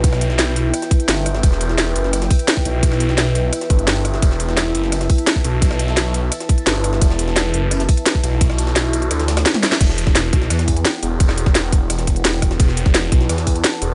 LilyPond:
<<
  \new Staff \with { instrumentName = "Ambient pad" } { \time 4/4 \key e \minor \tempo 4 = 172 << { g''1~ | g''1~ | g''1 | a''1~ |
a''1~ | a''1~ | a''1 | g''1~ |
g''1 | a''1 | } \\ { <e' b' e''>1~ | <e' b' e''>1~ | <e' b' e''>1~ | <e' b' e''>1~ |
<e' b' e''>1~ | <e' b' e''>1~ | <e' b' e''>1 | <e' b' fis''>1~ |
<e' b' fis''>1~ | <e' b' fis''>1 | } >> }
  \new Staff \with { instrumentName = "Detuned saw bass" } { \clef bass \time 4/4 \key e \minor b,,2 r4 g,,4 | e,,4. fis,,4 r4 b,,8~ | b,,2 r8 g,,4. | e,,4. fis,,4 r4 b,,8~ |
b,,2 r4 g,,4 | e,,4. fis,,4 r4 b,,8~ | b,,2 d,4 r4 | e,,4. b,,8 e,4 r8 e,,8~ |
e,,2 e,,2 | e,,4. b,,8 e,4 r8 e,,8 | }
  \new DrumStaff \with { instrumentName = "Drums" } \drummode { \time 4/4 <hh bd cymr>16 <ss sn>16 <hh cymr>16 sn16 <hh cymr sn>8 <hh cymr>8 <hh cymr ss>16 <hh sn>16 <hh bd cymr>16 hh16 <hh cymr sn>8 <hh cymr ss>16 sn16 | <hh bd cymr>16 sn16 <hh cymr>16 sn16 <hh cymr sn>8 <hh cymr>16 sn16 <hh cymr ss>16 <hh sn>16 <hh hho bd>16 <hh cymr>16 <hh cymr sn>16 bd16 <hh cymr>8 | <hh bd cymr>16 <ss sn>16 <hh cymr>16 sn16 <hh cymr sn>8 <hh cymr>8 <hh cymr ss>16 <hh sn>16 <hh bd cymr>16 hh16 <hh cymr sn>8 <hh cymr ss>16 sn16 | <hh bd cymr>16 sn16 <hh cymr>16 sn16 <hh cymr sn>8 <hh cymr>16 sn16 <hh cymr ss>16 <hh sn>16 <hh hho bd>16 <hh cymr>16 <hh cymr sn>16 bd16 <hh cymr>8 |
<hh bd cymr>16 <ss sn>16 <hh cymr>16 sn16 <hh cymr sn>8 <hh cymr>8 <hh cymr ss>16 <hh sn>16 <hh bd cymr>16 hh16 <hh cymr sn>8 <hh cymr ss>16 sn16 | <hh bd cymr>16 sn16 <hh cymr>16 sn16 <hh cymr sn>8 hh8 <hh cymr ss>16 <hh sn>16 <hh hho bd>16 <hh cymr>16 <hh cymr sn>16 bd16 <hh cymr>8 | <hh bd cymr>16 <ss sn>16 <hh cymr>16 sn16 <hh cymr sn>8 <hh cymr>16 hh16 <hh cymr ss>16 <hh sn>16 <hh cymr sn>16 <hh cymr ss sn>16 <hh cymr sn>16 <cymr sn tommh>16 <hh cymr ss sn>16 <cymr sn>16 | <cymc hh bd cymr>16 sn16 <hh cymr>16 <bd sn>16 <hh cymr sn>8 <hh bd cymr>16 sn16 <hh cymr ss>16 <hh sn>16 <hh hho bd>16 <hh cymr>16 <hh cymr sn>8 <hh cymr>8 |
<hh bd cymr>16 <ss sn>16 <hh cymr>16 <bd sn>16 <hh cymr sn>8 <hh bd cymr>8 <hh cymr ss>16 <hh sn>16 <hh bd cymr>16 hh16 <hh cymr sn>8 <hh bd cymr ss>16 sn16 | <hh bd cymr>16 sn16 <hh cymr>16 <bd sn>16 <hh cymr sn>8 <hh bd cymr>16 sn16 <hh cymr ss>16 <hh sn>16 <hh hho bd>16 <hh cymr>16 <hh cymr sn>8 <hh cymr>8 | }
>>